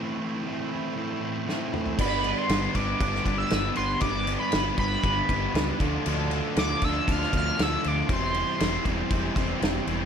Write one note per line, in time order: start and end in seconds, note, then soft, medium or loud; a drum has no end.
0.00 0.45 A2 medium
0.00 0.44 E3 medium
0.00 0.21 A3 medium
0.00 0.20 C4 medium
0.00 0.18 E4 medium
0.19 0.45 A3 soft
0.19 0.46 C4 soft
0.19 0.47 E4 medium
0.45 0.96 E3 medium
0.45 0.96 A3 medium
0.45 0.97 C4 medium
0.45 0.97 E4 medium
0.71 1.48 A3 soft
0.71 1.48 C4 medium
0.71 1.49 E4 medium
0.95 1.47 A2 medium
0.95 1.46 E3 medium
0.95 1.23 A3 medium
0.95 1.21 C4 medium
0.95 1.20 E4 medium
1.21 1.47 A3 soft
1.21 1.48 C4 soft
1.21 1.49 E4 medium
1.47 1.97 A2 medium
1.47 1.97 E3 soft
1.47 1.75 A3 medium
1.47 1.73 C4 medium
1.47 1.71 E4 medium
1.47 snare soft
1.73 1.98 A3 medium
1.73 1.98 C4 medium
1.73 1.97 E4 medium
1.73 mid tom medium
1.86 floor tom medium
1.98 2.32 G1 medium
1.98 2.23 G2 medium
1.98 2.22 D3 medium
1.98 2.24 G3 medium
1.98 2.24 B3 loud
1.98 2.25 D4 loud
1.98 2.26 B4 loud
1.98 2.39 B5 loud
1.98 kick loud
1.98 crash loud
1.98 crash medium
2.23 2.50 G2 medium
2.23 2.50 D3 medium
2.23 2.51 G3 medium
2.23 2.51 B3 medium
2.23 2.52 D4 medium
2.23 2.49 B4 medium
2.23 crash medium
2.37 2.77 C6 medium
2.48 2.66 G1 loud
2.48 2.73 G2 loud
2.48 2.73 D3 loud
2.48 2.74 G3 loud
2.48 2.73 D4 medium
2.48 2.73 B4 medium
2.48 snare loud
2.48 crash loud
2.52 2.75 B3 loud
2.52 2.76 D4 loud
2.74 2.92 G1 loud
2.74 2.97 G2 medium
2.74 2.98 D3 medium
2.74 2.99 G3 medium
2.74 3.00 B3 medium
2.74 3.00 D4 medium
2.74 2.99 B4 loud
2.74 3.38 D6 loud
2.74 kick medium
2.74 crash medium
2.98 3.17 G1 loud
2.98 3.25 G2 medium
2.98 3.25 D3 medium
2.98 3.26 G3 medium
2.98 3.26 B3 medium
2.98 3.27 D4 medium
2.98 3.24 B4 medium
2.98 kick loud
2.98 crash medium
3.15 snare soft
3.26 3.43 G1 medium
3.26 3.50 G2 loud
3.26 3.51 D3 loud
3.26 3.52 G3 medium
3.26 3.52 B3 medium
3.26 3.54 D4 loud
3.26 3.50 B4 medium
3.26 kick medium
3.26 crash medium
3.38 3.74 E6 loud
3.50 3.68 G1 loud
3.50 3.75 G2 medium
3.50 3.76 D3 medium
3.50 3.77 G3 medium
3.50 3.77 B3 medium
3.50 3.78 D4 medium
3.50 3.76 B4 medium
3.50 snare loud
3.50 crash medium
3.75 3.94 G1 medium
3.75 4.00 G2 medium
3.75 4.01 D3 medium
3.75 4.02 G3 medium
3.75 4.02 B3 loud
3.75 4.03 D4 medium
3.75 4.02 B4 loud
3.75 4.00 C6 medium
3.75 crash medium
4.00 4.36 G1 medium
4.00 4.25 G2 medium
4.00 4.25 D3 medium
4.00 4.26 G3 medium
4.00 4.26 B3 medium
4.00 4.28 D4 loud
4.00 4.27 B4 loud
4.00 4.37 D6 loud
4.00 kick loud
4.00 crash medium
4.26 4.50 G2 medium
4.26 4.50 D3 medium
4.26 4.51 G3 medium
4.26 4.52 B3 loud
4.26 4.53 D4 medium
4.26 4.53 B4 loud
4.26 crash medium
4.40 4.75 B5 loud
4.51 4.71 G1 loud
4.51 4.76 G2 loud
4.51 4.77 D3 loud
4.51 4.77 G3 loud
4.51 4.78 B3 loud
4.51 4.79 D4 loud
4.51 4.78 B4 loud
4.51 snare loud
4.51 crash medium
4.78 4.95 G1 loud
4.78 5.01 G2 medium
4.78 5.02 D3 medium
4.78 5.03 G3 medium
4.78 5.03 B3 loud
4.78 5.03 D4 loud
4.78 5.04 B4 loud
4.78 5.76 B5 medium
4.78 kick medium
4.78 crash medium
5.03 5.20 G1 loud
5.03 5.27 G2 medium
5.03 5.28 D3 loud
5.03 5.28 G3 medium
5.03 5.29 B3 medium
5.03 5.29 D4 medium
5.03 5.28 B4 loud
5.03 kick loud
5.03 crash medium
5.28 5.46 G1 medium
5.28 5.53 G2 medium
5.28 5.53 D3 loud
5.28 5.54 G3 loud
5.28 5.55 B3 medium
5.28 5.55 D4 loud
5.28 5.54 B4 medium
5.28 kick loud
5.28 crash medium
5.54 5.71 C#2 medium
5.54 5.78 G2 medium
5.54 5.77 D3 medium
5.54 5.79 G3 medium
5.54 5.79 B3 loud
5.54 5.79 D4 medium
5.54 5.79 B4 loud
5.54 snare loud
5.54 crash medium
5.79 5.97 D2 medium
5.79 6.04 D3 loud
5.79 6.05 F3 loud
5.79 6.05 A3 loud
5.79 6.06 D4 loud
5.79 6.05 F4 loud
5.79 6.07 A4 loud
5.79 kick loud
5.79 crash medium
6.05 6.40 D2 medium
6.05 6.29 D3 medium
6.05 6.30 F3 medium
6.05 6.30 A3 medium
6.05 6.31 D4 loud
6.05 6.33 F4 loud
6.05 6.33 A4 loud
6.05 crash medium
6.30 6.54 D3 medium
6.30 6.55 F3 medium
6.30 6.55 A3 medium
6.30 6.56 D4 medium
6.30 6.57 F4 loud
6.30 crash medium
6.34 6.57 A4 loud
6.55 6.73 D2 loud
6.55 6.80 D3 loud
6.55 6.80 F3 loud
6.55 6.81 A3 loud
6.55 6.82 D4 loud
6.55 6.84 F4 medium
6.55 6.84 A4 loud
6.55 6.86 D6 loud
6.55 snare loud
6.55 crash medium
6.81 6.98 D2 loud
6.81 7.06 D3 medium
6.81 7.06 F3 medium
6.81 7.07 A3 loud
6.81 7.07 D4 loud
6.81 7.08 A4 loud
6.81 7.13 E6 loud
6.81 kick medium
6.81 crash medium
6.85 7.08 F4 loud
7.07 7.24 D2 loud
7.07 7.31 D3 medium
7.07 7.32 F3 medium
7.07 7.32 A3 loud
7.07 7.33 D4 medium
7.07 7.34 F4 medium
7.07 7.34 A4 medium
7.07 kick loud
7.07 crash medium
7.11 7.35 F6 loud
7.22 snare soft
7.32 7.50 D2 medium
7.32 7.56 D3 loud
7.32 7.57 F3 loud
7.32 7.57 A3 loud
7.32 7.58 D4 loud
7.32 7.58 F4 loud
7.32 7.59 A4 loud
7.32 kick medium
7.32 crash medium
7.37 7.64 F6 loud
7.57 7.75 D2 medium
7.57 7.81 D3 medium
7.57 7.82 F3 medium
7.57 7.82 A3 medium
7.57 7.83 D4 medium
7.57 7.83 F4 loud
7.57 7.84 A4 medium
7.57 snare loud
7.57 crash medium
7.62 7.89 E6 loud
7.82 8.01 D2 medium
7.82 8.07 D3 medium
7.82 8.07 F3 medium
7.82 8.07 A3 loud
7.82 8.08 D4 loud
7.82 8.08 F4 medium
7.82 8.08 A4 medium
7.82 crash medium
7.88 8.11 D6 medium
8.08 8.42 E1 medium
8.08 8.34 E2 loud
8.08 8.33 E3 loud
8.08 8.34 G3 medium
8.08 8.34 C4 loud
8.08 8.35 E4 loud
8.08 8.35 C5 loud
8.08 kick loud
8.08 crash medium
8.12 8.35 G4 loud
8.12 9.08 C6 loud
8.34 8.58 E2 medium
8.34 8.58 E3 medium
8.34 8.59 G3 medium
8.34 8.59 C4 medium
8.34 8.60 E4 medium
8.34 8.60 G4 medium
8.34 8.60 C5 medium
8.34 crash medium
8.58 8.77 E1 loud
8.58 8.83 E2 medium
8.58 8.83 E3 medium
8.58 8.84 G3 loud
8.58 8.83 C4 loud
8.58 8.85 E4 loud
8.58 8.85 G4 loud
8.58 8.84 C5 loud
8.58 snare loud
8.58 crash medium
8.84 9.02 E1 loud
8.84 9.09 E2 medium
8.84 9.09 E3 medium
8.84 9.09 G3 medium
8.84 9.10 C4 medium
8.84 9.10 E4 loud
8.84 9.11 G4 medium
8.84 9.10 C5 loud
8.84 kick medium
8.84 crash medium
9.09 9.28 E1 medium
9.09 9.34 E2 medium
9.09 9.35 E3 medium
9.09 9.35 G3 medium
9.09 9.35 C4 medium
9.09 9.36 E4 medium
9.09 9.36 G4 loud
9.09 9.35 C5 medium
9.09 kick loud
9.09 crash medium
9.35 9.53 E1 medium
9.35 9.59 E2 medium
9.35 9.60 E3 loud
9.35 9.62 G3 medium
9.35 9.61 C4 loud
9.35 9.63 E4 loud
9.35 9.61 G4 medium
9.35 9.60 C5 medium
9.35 kick medium
9.35 crash medium
9.60 9.78 E1 medium
9.60 9.83 E2 medium
9.60 9.86 E3 medium
9.60 9.86 G3 medium
9.60 9.86 C4 medium
9.60 9.88 E4 medium
9.60 9.86 G4 loud
9.60 9.85 C5 medium
9.60 snare loud
9.60 crash medium
9.84 10.03 E1 medium
9.84 10.05 E2 medium
9.84 10.05 E3 medium
9.84 10.05 G3 medium
9.84 10.05 C4 medium
9.84 10.05 G4 medium
9.84 10.05 C5 medium
9.84 crash medium
9.88 10.05 E4 loud